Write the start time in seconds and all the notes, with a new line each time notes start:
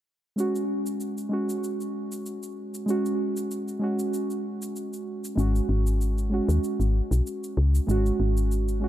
0.36 G#3 C#4 F#4, shaker
0.55 shaker
0.86 shaker
1.00 shaker
1.18 shaker
1.29 G#3 C#4
1.33 F#4
1.49 shaker
1.64 shaker
1.81 shaker
2.12 shaker
2.26 shaker
2.43 shaker
2.74 shaker
2.86 G#3 C#4, shaker
2.90 F#4
3.06 shaker
3.37 shaker
3.51 shaker
3.68 shaker
3.79 G#3 C#4
3.83 F#4
3.99 shaker
4.14 shaker
4.30 shaker
4.62 shaker
4.76 shaker
4.93 shaker
5.24 shaker
5.36 G#1 G#3 C#4, shaker
5.40 F#4
5.56 shaker
5.69 G#1
5.87 shaker
6.01 shaker
6.18 shaker
6.30 G#3 C#4 F#4
6.49 D#2, shaker
6.64 shaker
6.80 G#1, shaker
7.11 B1, shaker
7.27 shaker
7.44 shaker
7.57 C#2
7.75 shaker
7.87 G#1 G#3 C#4 F#4, shaker
8.06 shaker
8.20 G#1
8.37 shaker
8.52 shaker
8.68 shaker
8.80 G#3 C#4 F#4